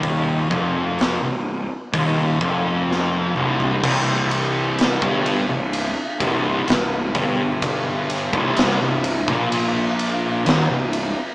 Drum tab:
CC |----------------|x---------------|----------------|
RD |----------------|--x-x-x-x-x-x-x-|x-x-x-x-x-x-x-x-|
HH |o---o---o-------|----------------|----------------|
SD |----o-------o---|----o-------o---|----o--o----o---|
T2 |--------------o-|----------------|----------------|
FT |---------------o|----------------|----------------|
BD |o-o-----o-o-----|o----o----o---o-|o--o---o--------|